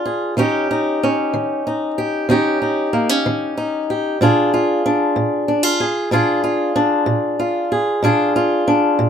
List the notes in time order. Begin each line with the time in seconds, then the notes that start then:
Already playing: D4 F4
0.06 G#4
0.37 D#3 C#4 D#4 G4
0.71 D#4
1.03 C#4
1.34 D#3
1.67 D#4
1.98 G4
2.29 D#3 C#4 D#4 G4
2.62 D#4
2.93 A#3
3.09 C#4
3.26 D#3
3.57 D#4
3.90 G4
4.21 A#2 D4 F4 G#4
4.54 F4
4.86 D4
5.16 A#2
5.48 D4
5.63 F4
5.80 G#4
6.11 A#2 D4 F4 G#4
6.44 F4
6.76 D4
7.06 A#2
7.39 F4
7.72 G#4
8.03 A#2 D4 F4 G#4
8.36 F4
8.68 D4
8.99 A#2